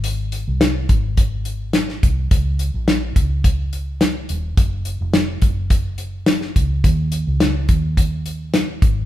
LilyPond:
<<
  \new Staff \with { instrumentName = "Fingered electric bass" } { \clef bass \time 4/4 \key des \lydian \tempo 4 = 106 aes,,8. c,8. aes,,2 c,8 | des,8. bes,,8. des,2 ees,,8 | ges,,8. f,,8. ges,,2 des,8 | ees,8. des,8. ees,2 aes,,8 | }
  \new DrumStaff \with { instrumentName = "Drums" } \drummode { \time 4/4 hh8 hh8 <hh sn>8 <hh bd>8 <hh bd>8 hh8 <hh sn>16 sn16 <hh bd>8 | <hh bd>8 hh8 <hh sn>8 <hh bd>8 <hh bd>8 hh8 <hh sn>8 hh8 | <hh bd>8 hh8 <hh sn>8 <hh bd>8 <hh bd>8 hh8 <hh sn>16 sn16 <hh bd>8 | <hh bd>8 hh8 <hh sn>8 <hh bd>8 <hh bd>8 hh8 <hh sn>8 <hh bd>8 | }
>>